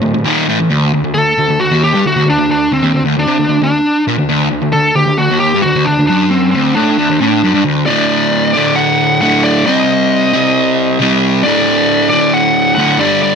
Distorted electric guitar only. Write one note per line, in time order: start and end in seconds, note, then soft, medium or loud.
0.02 0.13 D2 medium
0.02 0.13 A2 medium
0.14 0.24 D2 medium
0.14 0.25 A2 medium
0.25 0.45 D#2 medium
0.25 0.46 A#2 medium
0.25 0.46 D#3 loud
0.49 0.58 A2 medium
0.49 0.58 E3 medium
0.49 0.58 A3 medium
0.60 0.69 A2 medium
0.60 0.70 E3 medium
0.69 0.91 D2 loud
0.94 1.03 D2 medium
1.04 1.13 D2 medium
1.15 1.32 D2 medium
1.38 1.48 D2 medium
1.49 1.58 D2 medium
1.60 1.70 D2 medium
1.71 1.93 D#2 loud
1.95 2.04 G2 loud
2.06 2.15 D2 medium
2.16 2.25 D2 loud
2.26 2.37 D2 medium
2.38 2.48 D2 medium
2.49 2.67 D2 medium
2.72 2.82 D2 medium
2.82 2.93 D#2 loud
2.94 3.04 D2 medium
3.05 3.15 D2 loud
3.17 3.27 D2 medium
3.27 3.38 C3 loud
3.39 3.48 D2 medium
3.49 3.61 D2 medium
3.62 3.79 D2 medium
4.07 4.17 A#2 loud
4.18 4.28 D2 medium
4.29 4.50 D2 loud
4.51 4.61 D2 medium
4.62 4.73 D2 medium
4.74 4.92 D2 medium
4.96 5.06 D2 medium
5.07 5.18 D2 medium
5.20 5.30 D2 medium
5.31 5.52 D#2 loud
5.55 5.64 G2 loud
5.65 5.75 D2 medium
5.76 5.85 D2 loud
5.88 5.98 D2 medium
5.99 6.09 D2 medium
6.10 6.53 F#2 loud
6.55 6.75 D2 loud
6.76 6.97 A2 loud
6.98 7.08 D2 loud
7.10 7.19 D#2 loud
7.21 7.42 A2 loud
7.44 7.53 F#2 loud
7.54 7.64 G2 loud
7.65 7.85 D2 loud
7.86 8.52 D2 medium
7.86 8.53 A2 loud
7.86 8.53 D3 loud
8.54 9.20 D2 medium
8.54 9.20 A2 medium
8.54 9.19 D3 medium
9.21 9.64 D2 medium
9.21 9.64 A2 medium
9.21 9.65 D3 medium
9.66 10.31 C3 medium
9.66 10.32 G3 loud
9.66 10.32 C4 loud
10.33 10.98 C3 medium
10.33 10.99 G3 medium
10.33 10.98 C4 medium
10.99 11.42 C3 medium
10.99 11.43 G3 medium
10.99 11.44 C4 medium
11.43 12.09 D2 medium
11.43 12.10 A2 loud
11.43 12.10 D3 loud
12.11 12.75 D2 medium
12.11 12.77 A2 medium
12.11 12.76 D3 medium
12.76 12.98 D2 medium
12.76 12.98 A2 medium
12.76 12.99 D3 medium
12.98 13.35 G2 loud
12.98 13.35 D3 loud
12.98 13.35 G3 loud